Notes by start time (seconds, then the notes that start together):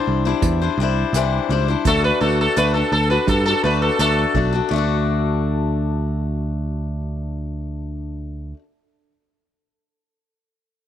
Already playing: G3 D4 E4 C5
0.07 C2
0.25 G3 D4 E4 C5
0.42 E2, kick, closed hi-hat
0.62 G3 D4 E4 C5
0.78 C2 G3 D4
0.82 E4 C5
1.13 C2 C3 E3 G3 D4 E4, closed hi-hat
1.17 C5
1.49 C#2 G3 D4 E4 C5
1.68 G3 D4 E4 C5
1.85 D2 D3 A3 D4 F#4 A4, kick, closed hi-hat
2.04 B4
2.21 D2 A3 D4 F#4 A4
2.41 A4
2.56 D2 D3 A3 D4 F#4 A4 B4, closed hi-hat
2.74 D4 F#4 A4
2.92 D2 A4
3.10 D4 F#4 A4 B4
3.27 G2 A4, kick, closed hi-hat
3.46 D4 F#4 A4
3.64 D2 A3 D4 F#4 A4 B4
3.82 A4
3.99 D2 D3 A3 D4 F#4 A4, closed hi-hat
4.34 B1 A3 D4 F#4 A4, kick
4.53 D4 F#4 A4
4.69 D2 D3 A3
4.73 D4 F#4
4.78 A4